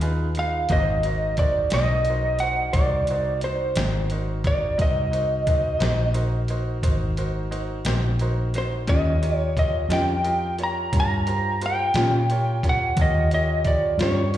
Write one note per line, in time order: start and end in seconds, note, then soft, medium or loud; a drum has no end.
0.00 0.66 D#2 medium
0.00 0.27 D#4 medium
0.00 0.27 F4 medium
0.00 0.27 G#4 medium
0.00 0.27 B4 medium
0.00 closed hi-hat medium
0.35 0.62 D#4 medium
0.35 0.62 F4 soft
0.35 0.62 G#4 medium
0.35 0.62 B4 medium
0.35 closed hi-hat medium
0.39 0.72 F5 medium
0.69 1.69 G#1 medium
0.69 0.91 G#2 medium
0.69 0.90 F#3 medium
0.69 0.91 A#3 medium
0.69 0.91 C4 medium
0.69 0.95 D#4 medium
0.69 0.96 F#4 medium
0.69 0.96 A#4 medium
0.69 0.96 C5 medium
0.69 1.39 D#5 medium
0.69 kick loud
0.69 closed hi-hat medium
1.03 1.30 D#4 medium
1.03 1.30 F#4 soft
1.03 1.30 A#4 soft
1.03 1.30 C5 medium
1.03 closed hi-hat medium
1.37 1.64 D#4 medium
1.37 1.65 F#4 soft
1.37 1.65 A#4 soft
1.37 1.65 C5 medium
1.37 1.73 D5 medium
1.37 kick medium
1.37 closed hi-hat medium
1.70 2.72 B1 medium
1.70 1.94 F#3 medium
1.70 1.93 A#3 medium
1.70 1.93 C4 medium
1.70 2.37 D#5 medium
1.70 snare medium
1.70 closed hi-hat medium
1.74 1.94 G#2 medium
1.74 1.99 D#4 medium
1.74 1.99 F#4 soft
1.74 1.99 A#4 soft
1.74 1.99 C5 medium
2.05 closed hi-hat medium
2.09 2.34 D#4 medium
2.09 2.33 F#4 soft
2.09 2.34 A#4 medium
2.09 2.34 C5 medium
2.39 2.67 D#4 medium
2.39 2.67 F#4 soft
2.39 2.67 A#4 soft
2.39 2.67 C5 medium
2.39 2.75 F#5 medium
2.39 closed hi-hat medium
2.73 3.74 C2 medium
2.73 3.01 D#4 medium
2.73 3.01 F#4 soft
2.73 3.01 A#4 medium
2.73 3.01 C5 medium
2.73 3.44 D5 medium
2.73 kick medium
2.73 closed hi-hat medium
3.07 3.35 D#4 medium
3.07 3.35 F#4 medium
3.07 3.35 A#4 soft
3.07 3.35 C5 medium
3.07 closed hi-hat medium
3.41 3.69 D#4 medium
3.41 3.69 F#4 soft
3.41 3.69 A#4 soft
3.41 4.08 C5 medium
3.41 3.69 C5 medium
3.41 closed hi-hat medium
3.76 4.76 G#1 medium
3.76 3.98 G#2 medium
3.76 3.98 F#3 medium
3.76 3.98 A#3 medium
3.76 3.98 C4 medium
3.76 4.03 D#4 medium
3.76 4.03 F#4 soft
3.76 4.04 A#4 soft
3.76 4.03 C5 medium
3.76 snare loud
3.76 closed hi-hat medium
4.10 4.37 D#4 medium
4.10 4.37 F#4 soft
4.10 4.37 A#4 medium
4.10 4.37 C5 medium
4.10 closed hi-hat medium
4.44 4.70 D#4 medium
4.44 4.71 F#4 soft
4.44 4.71 A#4 soft
4.44 4.71 C5 medium
4.44 4.81 D5 medium
4.44 kick medium
4.44 closed hi-hat medium
4.77 5.78 C2 medium
4.77 5.04 D#4 medium
4.77 5.04 F#4 medium
4.77 5.05 A#4 medium
4.77 5.04 C5 medium
4.77 kick medium
4.77 closed hi-hat medium
4.82 6.13 D#5 medium
5.12 5.38 D#4 medium
5.12 5.39 F#4 soft
5.12 5.39 A#4 soft
5.12 5.39 C5 medium
5.12 closed hi-hat medium
5.47 5.73 D#4 medium
5.47 5.73 F#4 soft
5.47 5.73 A#4 soft
5.47 5.74 C5 medium
5.47 kick medium
5.47 closed hi-hat medium
5.79 6.80 A#1 medium
5.79 6.03 F#3 medium
5.79 6.03 A#3 medium
5.79 6.03 C4 medium
5.79 6.06 D#4 medium
5.79 6.07 F#4 medium
5.79 6.07 A#4 medium
5.79 6.07 C5 medium
5.79 snare loud
5.79 closed hi-hat medium
5.83 6.03 G#2 medium
6.14 6.41 D#4 medium
6.14 6.41 F#4 medium
6.14 6.41 A#4 medium
6.14 6.41 C5 medium
6.14 closed hi-hat medium
6.48 6.76 D#4 medium
6.48 6.76 F#4 medium
6.48 6.76 A#4 medium
6.48 6.76 C5 medium
6.48 closed hi-hat medium
6.82 7.83 G#1 medium
6.82 7.09 D#4 medium
6.82 7.10 F#4 medium
6.82 7.10 A#4 medium
6.82 7.09 C5 medium
6.82 kick medium
6.82 closed hi-hat medium
7.17 7.44 D#4 medium
7.17 7.44 F#4 medium
7.17 7.44 A#4 medium
7.17 7.44 C5 medium
7.17 closed hi-hat medium
7.51 7.77 D#4 medium
7.51 7.78 F#4 medium
7.51 7.78 A#4 medium
7.51 7.78 C5 medium
7.51 closed hi-hat medium
7.85 8.85 A#1 medium
7.85 8.08 F#3 medium
7.85 8.07 A#3 medium
7.85 8.07 C4 medium
7.85 8.12 D#4 medium
7.85 8.12 F#4 soft
7.85 8.12 A#4 medium
7.85 8.13 C5 medium
7.85 snare loud
7.85 closed hi-hat medium
7.89 8.08 G#2 medium
8.19 8.47 D#4 medium
8.19 8.47 F#4 medium
8.19 8.46 A#4 medium
8.19 8.47 C5 medium
8.19 closed hi-hat medium
8.54 8.81 D#4 soft
8.54 8.81 F#4 soft
8.54 8.80 A#4 soft
8.54 8.81 C5 medium
8.54 snare soft
8.54 closed hi-hat medium
8.58 8.67 C5 medium
8.87 9.87 D#2 medium
8.87 9.09 D#3 medium
8.87 9.09 G3 medium
8.87 9.09 C#4 medium
8.87 9.15 F4 medium
8.87 9.10 F4 medium
8.87 9.15 G4 medium
8.87 9.14 A#4 medium
8.87 9.15 C#5 medium
8.87 9.37 D#5 medium
8.87 kick medium
8.87 closed hi-hat medium
9.22 9.48 F4 medium
9.22 9.49 G4 soft
9.22 9.48 A#4 soft
9.22 9.49 C#5 medium
9.22 closed hi-hat medium
9.37 9.53 C#5 medium
9.56 9.82 F4 soft
9.56 9.83 G4 soft
9.56 9.83 A#4 soft
9.56 9.83 C#5 medium
9.56 9.90 D#5 medium
9.56 kick medium
9.56 closed hi-hat medium
9.89 10.89 F2 medium
9.89 10.12 D#3 medium
9.89 10.12 G3 medium
9.89 10.11 C#4 medium
9.89 10.16 F4 soft
9.89 10.11 F4 medium
9.89 10.16 G4 soft
9.89 10.16 A#4 soft
9.89 10.17 C#5 medium
9.89 snare medium
9.89 closed hi-hat medium
9.93 10.56 G5 medium
10.24 10.50 F4 medium
10.24 10.50 G4 soft
10.24 10.50 A#4 soft
10.24 10.51 D#5 medium
10.24 closed hi-hat medium
10.59 10.85 F4 soft
10.59 10.85 G4 soft
10.59 10.85 A#4 soft
10.59 10.85 C#5 medium
10.59 closed hi-hat medium
10.63 10.96 A#5 medium
10.92 11.92 G2 medium
10.92 11.19 F4 medium
10.92 11.18 G4 soft
10.92 11.19 A#4 soft
10.92 11.19 C#5 medium
10.92 kick medium
10.92 snare soft
10.92 closed hi-hat medium
11.00 11.61 A#5 loud
11.27 11.53 F4 medium
11.27 11.53 G4 soft
11.27 11.53 A#4 soft
11.27 11.53 C5 medium
11.27 closed hi-hat medium
11.61 11.87 F4 medium
11.61 11.87 G4 soft
11.61 11.87 A#4 soft
11.61 11.88 C5 medium
11.61 closed hi-hat medium
11.66 12.69 G5 medium
11.94 12.94 A#2 medium
11.94 12.17 D#3 soft
11.94 12.17 G3 medium
11.94 12.16 C#4 medium
11.94 12.16 F4 medium
11.94 12.22 F4 soft
11.94 12.22 G4 soft
11.94 12.22 A#4 soft
11.94 12.22 C#5 medium
11.94 snare loud
11.94 closed hi-hat medium
12.30 12.56 F4 medium
12.30 12.56 G4 soft
12.30 12.56 A#4 soft
12.30 12.56 C#5 medium
12.30 closed hi-hat medium
12.63 12.90 F4 medium
12.63 12.89 G4 soft
12.63 12.89 A#4 soft
12.63 12.90 C#5 medium
12.63 kick medium
12.63 snare soft
12.63 closed hi-hat medium
12.69 13.02 F#5 medium
12.96 13.96 D#2 medium
12.96 13.24 F4 medium
12.96 13.24 G4 medium
12.96 13.24 C#5 medium
12.96 kick loud
12.96 closed hi-hat medium
13.00 13.25 A#4 medium
13.00 13.31 D#5 medium
13.31 13.58 F4 soft
13.31 13.58 G4 medium
13.31 13.58 A#4 soft
13.31 13.58 C#5 medium
13.31 13.67 D#5 medium
13.31 closed hi-hat medium
13.65 13.92 F4 soft
13.65 13.92 G4 soft
13.65 13.92 A#4 soft
13.65 13.92 C#5 medium
13.65 14.02 D5 medium
13.65 kick medium
13.65 closed hi-hat medium
13.98 14.37 G2 medium
13.98 14.21 D#3 medium
13.98 14.21 G3 medium
13.98 14.21 C#4 medium
13.98 14.20 F4 medium
13.98 14.26 F4 soft
13.98 14.26 G4 soft
13.98 14.26 A#4 soft
13.98 14.26 C#5 medium
13.98 snare loud
13.98 closed hi-hat medium
14.03 14.37 C#5 medium
14.34 14.37 F4 medium
14.34 14.37 G4 soft
14.34 closed hi-hat medium